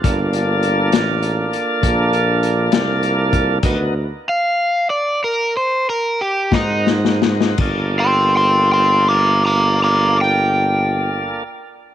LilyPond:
<<
  \new Staff \with { instrumentName = "Overdriven electric guitar" } { \time 12/8 \key g \minor \tempo 4. = 61 d'''4 r1 r4 | r4 eis''4 d''8 ais'8 c''8 ais'8 g'8 ees'8 r4 | r8 <g'' c'''>8 <g'' c'''>8 <g'' c'''>8 <bes'' d'''>8 <bes'' d'''>8 <bes'' d'''>8 g''2~ g''8 | }
  \new Staff \with { instrumentName = "Tonewheel organ" } { \time 12/8 \key g \minor <bes d' f' a'>1. | <b ees' fis' ais'>8 r1 <c' ees' ges' bes'>4. | <bes d' f' a'>1. | }
  \new Staff \with { instrumentName = "Tuba" } { \clef bass \time 12/8 \key g \minor g,,4. a,,4 r8 bes,,4. c,4. | d,4 r2. r8 aes,4. | g,,1. | }
  \new DrumStaff \with { instrumentName = "Drums" } \drummode { \time 12/8 <hh bd>8 hh8 hh8 <hh sn>8 hh8 hh8 <hh bd>8 hh8 hh8 <hh sn>8 hh8 <hh bd>8 | <cymc hh bd>4. r4. r4. <bd sn>8 sn16 sn16 sn16 sn16 | <cymc bd>4. r4. r4. r4. | }
>>